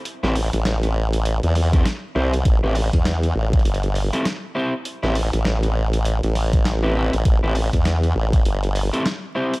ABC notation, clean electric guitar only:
X:1
M:4/4
L:1/16
Q:"Swing 16ths" 1/4=100
K:Am
V:1 name="Clean electric guitar"
z [CEGB] z8 z [CEGA] z2 [CEGc] z | z [CEGB] z8 z [CEGA] z2 [CEGc] z | z [CEGB] z8 z3 [CEGB] [CEGB] z | z [CEGB] z8 z [CEGA] z2 [CEGc] z |]